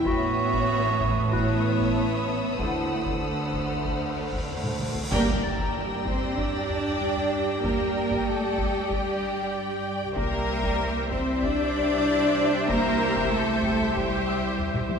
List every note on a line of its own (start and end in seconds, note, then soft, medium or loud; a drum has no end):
0.05 2.55 A1 medium
0.05 2.55 A2 medium
0.05 1.29 B3 medium
0.05 1.34 F#4 loud
0.05 2.55 B4 medium
0.05 1.28 C#5 medium
0.05 2.59 C#5 medium
0.05 1.28 E5 medium
0.05 2.59 A5 medium
0.05 4.76 B5 soft
0.05 4.13 D#6 soft
0.05 1.92 B6 soft
0.05 taiko medium
0.53 taiko medium
1.01 taiko medium
1.32 2.56 B3 medium
1.32 2.31 E4 medium
1.32 2.56 C#5 medium
1.32 2.56 E5 medium
1.32 3.90 E6 soft
1.32 3.18 F#6 soft
1.32 taiko medium
1.80 taiko medium
2.58 4.87 D2 soft
2.58 4.87 D3 soft
2.58 3.21 A3 soft
2.58 3.23 E4 medium
2.58 5.11 A4 medium
2.58 5.11 C5 medium
2.58 3.21 C5 soft
2.58 5.11 F#5 medium
2.58 3.20 F#5 soft
2.58 taiko medium
2.58 cymbal swell soft
3.06 taiko medium
3.21 4.88 A3 soft
3.21 4.48 D4 soft
3.21 4.88 C5 soft
3.21 4.88 F#5 soft
3.53 taiko medium
3.85 taiko medium
3.90 4.76 F6 soft
4.33 taiko medium
4.48 taiko low-mid medium
4.64 taiko mid medium
4.79 taiko mid medium
4.95 taiko low medium
5.11 10.13 G2 medium
5.11 6.02 A#3 medium
5.11 10.13 G4 medium
5.11 6.02 A#4 medium
5.11 10.13 D5 medium
5.11 10.13 G5 medium
5.11 8.17 E6 soft
5.11 9.81 A#6 soft
5.11 taiko medium
5.11 impact soft
5.27 taiko low-mid soft
5.43 7.29 A#5 soft
5.43 7.29 A6 soft
5.59 taiko medium
6.06 6.38 C4 medium
6.06 6.38 C5 medium
6.06 taiko medium
6.38 7.64 D4 medium
6.38 7.64 D5 medium
6.38 taiko medium
6.69 taiko low-mid soft
7.01 taiko low-mid soft
7.16 taiko low-mid soft
7.64 8.26 A#3 medium
7.64 8.26 A#4 medium
7.64 taiko medium
8.11 taiko medium
8.17 9.18 D#6 soft
8.27 8.91 A3 medium
8.27 8.90 A4 medium
8.58 taiko medium
8.90 9.85 G3 medium
8.90 9.85 G4 medium
8.90 taiko medium
10.16 14.99 C2 medium
10.16 11.08 A#3 medium
10.16 14.99 E4 medium
10.16 14.99 G4 medium
10.16 11.07 A#4 medium
10.16 14.99 C5 medium
10.16 14.99 E5 medium
10.16 14.99 G5 medium
10.16 14.87 E6 soft
10.16 13.61 B6 soft
10.16 taiko medium
10.63 taiko medium
10.81 14.87 G6 soft
11.11 11.43 C4 medium
11.11 11.43 C5 medium
11.11 taiko medium
11.43 12.69 D4 medium
11.43 12.69 D5 medium
11.43 taiko medium
12.69 13.32 A#3 loud
12.69 13.31 A#4 medium
12.69 taiko medium
13.17 taiko medium
13.32 13.95 A3 medium
13.32 13.96 A4 medium
13.64 taiko medium
13.94 14.88 G3 medium
13.94 14.90 G4 medium
13.94 taiko medium
14.29 14.99 E6 medium
14.59 taiko low-mid medium
14.74 taiko mid medium
14.90 taiko high medium